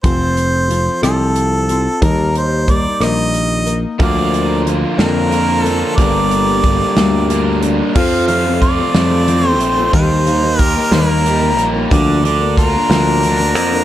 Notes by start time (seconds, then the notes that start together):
0.03 F1 F3 C4 F4 A4 C5, kick, closed hi-hat
0.37 closed hi-hat
0.69 F3 C4 F4 A4, closed hi-hat
1.02 C2 F3 C4 F4 A4, cross-stick, closed hi-hat
1.36 closed hi-hat
1.68 C4 F4 A4, closed hi-hat
2.02 D#2 D#3 G3 A#3 D#4 A#4, kick, closed hi-hat
2.35 C5, closed hi-hat
2.67 G3 A#3 D#4 A#4 D5, kick, closed hi-hat
3.00 A#1 D#3 G3 A#3 D#4 A#4 D#5, cross-stick, closed hi-hat
3.34 closed hi-hat
3.66 A#3 D#4 A#4, closed hi-hat
3.99 D2 D3 F3 A#3 D4 F4 A#4, kick, closed hi-hat
4.03 A#4 D5
4.34 closed hi-hat
4.65 F3 A#3 D4 A#4, closed hi-hat
4.98 F2 D3 F3 A#3 D4 A#4, snare, closed hi-hat
5.30 D3 F3 A#3 F4 A#4, closed hi-hat
5.63 D4 A4 A#4, closed hi-hat
5.67 A#3
5.96 G1 G2 D3 G3 A#3 D4 A#4 D5, kick, closed hi-hat
6.31 closed hi-hat
6.63 G3 A#3 D4 A#4, kick, closed hi-hat
6.97 D2 G2 D3 G3 A#3 D4 A#4, snare, closed hi-hat
7.29 G2 D3 G3 A#3 D4 A#4, closed hi-hat
7.62 G3 A#3 D4 A#4, closed hi-hat
7.95 F2 F3 C4 F4 A4 F5, kick, crash
8.28 F3 A3 C4 F4 A4 F5, closed hi-hat
8.44 C4 F4 A4
8.61 F4 D5, kick, closed hi-hat
8.77 C4 F4 A4
8.94 F2 F3 A3 C4 F4 A4, snare, closed hi-hat
9.27 F3 C4 F4 A4, closed hi-hat
9.43 C4 F4 A4
9.49 C5
9.60 A#1 A3, closed hi-hat
9.77 C4 F4 A4
9.93 D#2 D#3 G3 A#3 D#4 A#4 C5, kick, closed hi-hat
10.26 G3 A#3 D#4 A#4, closed hi-hat
10.42 A#3 D#4 A#4
10.59 G4 A#4, kick, closed hi-hat
10.75 A#3 D#4 A#4
10.92 D#2 D#3 G3 A#3 D#4 A#4, snare, closed hi-hat
11.25 G3 A#3 D#4 A#4, closed hi-hat
11.40 A#3 D#4 A#4
11.57 A#1 A#3, closed hi-hat
11.74 A#3 D#4 A#4
11.90 D2 D3 F3 A#3 D4 A#4 D5, kick, closed hi-hat
12.23 D3 F3 A#3 D4 A#4 D5, closed hi-hat
12.40 A#3 D4 A#4
12.57 F4 A#4, kick, closed hi-hat
12.72 A#3 D4 A#4
12.90 D2 D3 F3 A#3 D4 A#4, snare, closed hi-hat
13.22 F3 A#3 D4 A#4, closed hi-hat
13.39 A#3 D4 A#4
13.55 F2 D3, closed hi-hat
13.72 A#3 D4 A#4